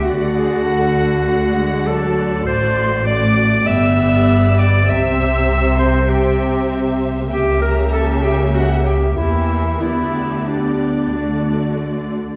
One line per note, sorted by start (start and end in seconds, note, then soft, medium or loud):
0.04 2.43 D2 medium
0.04 2.43 D3 medium
0.04 1.23 A3 soft
0.04 0.12 F#4 soft
0.04 1.88 F#4 medium
0.04 0.65 D5 soft
0.04 1.83 F#5 medium
0.34 0.64 G#4 medium
0.64 1.25 A4 soft
0.64 1.25 F#5 medium
1.25 1.55 A3 medium
1.25 1.84 F#4 medium
1.25 1.85 F#5 medium
1.55 1.86 G#3 medium
1.85 2.46 F#3 medium
1.85 2.45 F#4 medium
1.85 2.46 A4 medium
1.85 2.46 D5 medium
1.85 2.47 A5 medium
2.45 3.63 A1 medium
2.45 3.64 A2 medium
2.45 3.03 A3 medium
2.45 3.03 F#4 medium
2.45 3.06 C5 medium
2.45 3.03 D5 medium
2.45 3.05 C6 medium
3.06 3.65 A3 medium
3.06 3.66 F#4 medium
3.06 3.68 D5 medium
3.06 3.66 D5 medium
3.06 3.66 D6 medium
3.67 4.86 G1 medium
3.67 4.87 G2 medium
3.67 4.89 B3 medium
3.67 4.86 G4 medium
3.67 4.86 D5 medium
3.67 4.60 E5 medium
3.67 4.58 E6 medium
4.59 4.91 D5 medium
4.59 4.89 D6 medium
4.88 7.32 C2 medium
4.88 7.32 C3 medium
4.88 6.08 C4 medium
4.88 6.07 G4 medium
4.88 6.07 E5 medium
4.88 5.78 E5 medium
4.88 5.77 E6 medium
5.78 6.11 C5 medium
5.78 6.08 C6 medium
6.08 7.29 C4 medium
6.08 7.29 G4 medium
6.08 6.70 G4 medium
6.08 7.29 E5 medium
6.08 6.69 G5 medium
7.31 9.12 C#2 medium
7.31 9.12 C#3 medium
7.31 9.12 A#3 medium
7.31 9.12 G4 medium
7.31 7.60 G4 medium
7.31 9.12 E5 medium
7.31 7.39 G5 medium
7.62 7.76 A#4 medium
7.62 7.92 A#5 medium
7.92 8.06 A4 medium
7.92 8.24 A5 medium
8.23 8.37 G4 medium
8.23 8.31 G5 medium
8.54 8.68 F#4 medium
8.54 8.84 F#5 medium
8.84 9.18 G4 medium
8.84 8.94 G5 soft
9.15 9.81 E2 soft
9.15 9.81 E3 soft
9.15 9.80 A#3 soft
9.15 9.80 E4 medium
9.15 9.79 G4 soft
9.15 9.79 E5 soft
9.15 9.80 E5 soft
9.80 11.11 D2 soft
9.80 11.11 D3 soft
9.80 10.45 B3 soft
9.80 10.48 E4 medium
9.80 10.45 G4 soft
9.80 10.45 D5 soft
9.80 10.45 E5 medium
10.46 11.10 B3 soft
10.46 12.09 D4 medium
10.46 11.11 G4 soft
10.46 11.10 D5 soft
10.46 12.09 D5 soft
11.11 12.18 D2 soft
11.11 12.18 D3 soft
11.11 12.20 A3 soft
11.11 12.20 F#4 soft
11.11 12.18 D5 soft